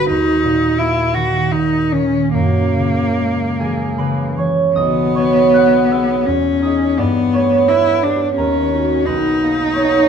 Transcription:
0.00 0.12 G1 soft
0.00 0.12 D4 soft
0.00 3.66 F#4 soft
0.09 2.38 D#2 soft
0.09 0.80 D#4 medium
0.44 1.53 A#2 soft
0.78 4.70 A#3 soft
0.78 1.16 E4 medium
1.14 1.93 D#3 soft
1.14 1.53 F#4 medium
1.51 2.38 A#2 soft
1.51 1.94 D#4 medium
1.92 2.38 D#3 soft
1.92 2.33 C#4 medium
2.33 4.78 F#2 soft
2.33 4.33 A#3 medium
2.75 3.98 C#3 soft
3.18 7.00 G#3 soft
3.59 4.37 E3 soft
3.59 5.91 G#4 soft
3.59 6.99 G#5 medium
3.98 4.78 C#3 soft
3.98 7.69 B4 soft
3.98 7.68 B5 medium
4.37 4.79 E3 soft
4.37 5.15 C#5 soft
4.37 5.02 C#6 medium
4.75 6.29 B1 soft
4.75 6.27 B3 medium
4.75 6.63 D#5 medium
4.75 6.61 D#6 medium
5.14 6.29 F#3 soft
5.14 6.29 C#5 medium
5.14 6.29 C#6 medium
5.54 7.69 B3 soft
5.54 6.29 F#5 medium
5.54 6.29 F#6 medium
5.91 6.63 G#4 soft
5.91 7.01 E5 medium
5.91 7.01 E6 medium
6.25 7.01 E2 soft
6.25 6.99 C#4 medium
6.61 7.01 D#4 soft
6.61 7.01 G#4 soft
6.61 7.00 D#6 medium
6.66 7.01 D#5 medium
6.98 8.40 G2 soft
6.98 7.70 B3 medium
6.98 8.40 D5 medium
6.98 8.39 D6 medium
7.33 8.40 A3 soft
7.33 9.09 C#5 medium
7.33 7.92 C#6 medium
7.68 8.40 B3 soft
7.68 8.04 E4 medium
7.68 8.40 B4 medium
7.68 8.40 B5 medium
8.03 8.35 D4 medium
8.03 8.40 G4 soft
8.36 9.10 D#2 soft
8.36 9.07 C#4 medium
8.36 10.09 A#4 soft
8.36 10.09 A#5 medium
8.73 10.09 D#4 soft
8.73 10.09 F#4 soft
9.06 10.09 B1 soft
9.06 10.09 D#4 medium
9.06 10.09 B4 medium
9.06 10.09 B5 medium
9.42 10.09 A#3 soft
9.74 10.09 B3 soft
9.74 10.09 C#5 medium
9.74 10.09 C#6 medium

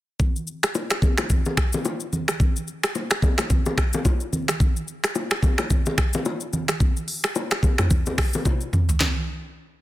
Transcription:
0.20 kick loud
0.20 low conga medium
0.20 shaker medium
0.36 shaker medium
0.47 shaker medium
0.63 finger snap medium
0.63 cross-stick loud
0.63 shaker medium
0.75 high bongo medium
0.75 shaker medium
0.90 finger snap medium
0.90 cross-stick loud
0.90 shaker medium
1.02 kick loud
1.02 low bongo medium
1.02 shaker medium
1.18 finger snap medium
1.18 cross-stick medium
1.18 high bongo medium
1.18 shaker medium
1.30 kick loud
1.30 low conga medium
1.30 shaker medium
1.45 low bongo medium
1.45 shaker medium
1.57 finger snap medium
1.57 kick loud
1.57 cross-stick loud
1.57 shaker medium
1.73 low bongo medium
1.73 shaker loud
1.85 high bongo medium
1.85 shaker medium
2.00 shaker medium
2.13 low conga medium
2.13 shaker medium
2.28 finger snap medium
2.28 cross-stick medium
2.28 shaker medium
2.40 kick loud
2.40 low conga medium
2.40 shaker medium
2.56 shaker medium
2.67 shaker medium
2.83 finger snap medium
2.83 cross-stick loud
2.83 shaker medium
2.95 high bongo medium
2.95 shaker medium
3.10 finger snap medium
3.10 cross-stick loud
3.10 shaker medium
3.22 kick loud
3.22 low bongo medium
3.22 shaker medium
3.38 finger snap medium
3.38 cross-stick medium
3.38 high bongo medium
3.38 shaker medium
3.50 kick loud
3.50 low conga medium
3.50 shaker medium
3.66 low bongo medium
3.66 shaker medium
3.78 finger snap medium
3.78 kick loud
3.78 cross-stick loud
3.78 shaker medium
3.93 low bongo medium
3.93 shaker medium
4.05 kick medium
4.05 high bongo medium
4.05 shaker medium
4.20 shaker soft
4.33 low conga medium
4.33 shaker medium
4.48 finger snap medium
4.48 cross-stick medium
4.48 shaker medium
4.60 kick loud
4.60 low conga medium
4.60 shaker medium
4.76 shaker medium
4.88 shaker medium
5.04 finger snap medium
5.04 cross-stick loud
5.04 shaker medium
5.15 high bongo medium
5.15 shaker medium
5.31 finger snap medium
5.31 cross-stick loud
5.31 shaker medium
5.43 kick medium
5.43 low bongo medium
5.43 shaker medium
5.58 finger snap medium
5.58 cross-stick medium
5.58 high bongo medium
5.58 shaker medium
5.70 kick loud
5.70 low conga medium
5.70 shaker medium
5.86 low bongo medium
5.86 shaker medium
5.98 finger snap medium
5.98 kick loud
5.98 cross-stick loud
5.98 shaker medium
6.13 low bongo medium
6.13 shaker medium
6.25 high bongo medium
6.25 shaker medium
6.40 shaker medium
6.53 low conga medium
6.53 shaker medium
6.68 finger snap medium
6.68 cross-stick medium
6.68 shaker medium
6.80 kick loud
6.80 low conga medium
6.80 shaker medium
6.97 shaker medium
7.08 open hi-hat medium
7.08 shaker medium
7.24 finger snap medium
7.24 cross-stick medium
7.24 shaker medium
7.35 high bongo medium
7.35 shaker medium
7.51 finger snap medium
7.51 cross-stick loud
7.51 shaker medium
7.63 kick loud
7.63 low bongo medium
7.63 shaker medium
7.78 finger snap medium
7.78 cross-stick medium
7.78 mid tom loud
7.78 high bongo medium
7.78 shaker medium
7.90 kick loud
7.90 low conga medium
7.90 shaker medium
8.06 low bongo medium
8.06 shaker medium
8.18 finger snap medium
8.18 kick loud
8.18 cross-stick loud
8.18 open hi-hat medium
8.18 shaker medium
8.33 low bongo medium
8.33 shaker loud
8.45 kick medium
8.45 high tom medium
8.45 high bongo medium
8.45 shaker medium
8.61 shaker medium
8.73 mid tom medium
8.73 low conga medium
8.73 shaker medium
8.89 floor tom medium
8.89 shaker medium
9.01 snare loud
9.01 clap medium
9.01 floor tom loud
9.01 low conga medium

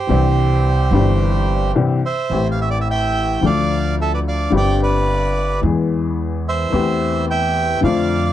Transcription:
0.00 1.72 G4 soft
0.00 1.72 C5 medium
0.07 0.88 C2 medium
0.07 0.88 C3 medium
0.07 0.87 E3 medium
0.07 0.87 C4 medium
0.07 0.88 D4 medium
0.11 0.89 G4 medium
0.91 1.71 G1 medium
0.91 1.71 G2 medium
0.91 1.70 E3 medium
0.91 1.71 C4 soft
0.91 1.72 D4 medium
0.95 1.73 G4 medium
1.75 1.99 C2 medium
1.75 1.99 C3 medium
1.75 1.99 E3 medium
1.75 1.99 C4 medium
1.75 1.99 D4 medium
1.75 1.99 G4 medium
2.05 2.48 C5 medium
2.05 2.48 E5 medium
2.29 3.36 A1 medium
2.29 3.37 A1 medium
2.29 3.37 A2 medium
2.29 3.36 E3 soft
2.29 3.36 A3 soft
2.29 3.37 C4 soft
2.34 3.38 G4 medium
2.51 2.60 F5 medium
2.61 2.69 E5 medium
2.71 2.79 D5 medium
2.81 2.88 E5 medium
2.91 3.40 E5 medium
2.91 3.46 G5 medium
3.41 4.47 D2 medium
3.41 4.47 D3 medium
3.41 4.46 F3 soft
3.41 4.47 A3 soft
3.41 4.48 D4 soft
3.41 4.48 A4 soft
3.46 3.95 D5 medium
3.46 3.95 F5 medium
4.01 4.12 A4 medium
4.01 4.12 E5 medium
4.14 4.19 B4 medium
4.14 4.20 D5 medium
4.28 4.52 D5 medium
4.28 4.52 F5 medium
4.50 5.57 G1 medium
4.50 5.57 G2 medium
4.50 5.56 D3 medium
4.50 5.57 G3 soft
4.50 5.57 C4 soft
4.55 5.58 G4 medium
4.55 4.80 D5 medium
4.55 4.81 G5 medium
4.83 5.60 B4 medium
4.83 5.60 D5 medium
5.61 6.67 E2 medium
5.61 6.67 E3 medium
5.61 6.67 G#3 soft
5.61 6.68 B3 soft
5.61 6.68 G#4 medium
6.48 7.26 C5 medium
6.48 7.25 E5 medium
6.71 7.77 E2 medium
6.71 7.77 E3 medium
6.71 7.76 A3 medium
6.71 7.77 C4 soft
6.71 7.78 G4 medium
7.31 7.81 E5 medium
7.31 7.80 G5 medium
7.81 8.33 F2 medium
7.81 8.33 D3 soft
7.81 8.33 F3 medium
7.81 8.33 A3 medium
7.81 8.33 C4 soft
7.81 8.33 F5 medium
7.85 8.33 F4 medium
7.85 8.33 D5 medium

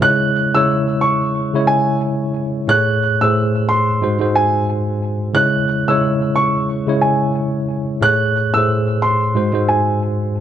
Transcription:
0.00 0.34 C#3 medium
0.00 0.34 G#3 medium
0.00 0.34 E4 medium
0.00 0.35 C#5 medium
0.00 0.51 F#6 loud
0.54 1.19 C#3 medium
0.54 1.19 G#3 medium
0.54 1.19 E4 medium
0.54 1.20 C#5 medium
0.54 0.99 E6 medium
1.01 1.64 C#6 medium
1.54 2.28 C#3 medium
1.54 2.29 G#3 medium
1.54 2.29 E4 medium
1.54 2.29 C#5 medium
1.67 1.98 G#5 medium
2.67 3.00 A2 medium
2.67 3.01 A3 medium
2.67 3.01 G#4 medium
2.67 3.02 C#5 medium
2.67 3.18 F#6 loud
3.21 3.86 A2 medium
3.21 3.86 A3 medium
3.21 3.87 G#4 medium
3.21 3.87 C5 medium
3.21 3.66 E6 medium
3.69 4.31 C6 medium
4.01 4.17 G#2 medium
4.01 4.17 G#3 medium
4.01 4.18 F#4 medium
4.01 4.18 C5 medium
4.19 4.94 G#2 medium
4.19 4.95 G#3 medium
4.19 4.95 F#4 medium
4.19 4.95 C5 medium
4.36 4.65 G#5 medium
5.33 5.67 C#3 medium
5.33 5.67 G#3 medium
5.33 5.68 E4 medium
5.33 5.68 C#5 medium
5.33 5.84 F#6 medium
5.88 6.52 C#3 medium
5.88 6.52 G#3 medium
5.88 6.53 E4 medium
5.88 6.53 C#5 medium
5.88 6.33 E6 medium
6.36 6.98 C#6 medium
6.87 7.62 C#3 medium
6.87 7.62 G#3 medium
6.87 7.62 E4 medium
6.87 7.63 C#5 medium
7.01 7.32 G#5 medium
8.01 8.34 A2 medium
8.01 8.34 A3 medium
8.01 8.35 G#4 medium
8.01 8.35 C#5 medium
8.01 8.52 F#6 loud
8.54 9.19 A2 medium
8.54 9.19 A3 medium
8.54 9.20 G#4 medium
8.54 9.20 C5 medium
8.54 8.99 E6 medium
9.02 9.65 C6 medium
9.35 9.50 G#2 medium
9.35 9.51 G#3 medium
9.35 9.51 F#4 medium
9.35 9.51 C5 medium
9.52 10.28 G#2 medium
9.52 10.28 G#3 medium
9.52 10.28 F#4 medium
9.52 10.29 C5 medium
9.68 9.99 G#5 medium

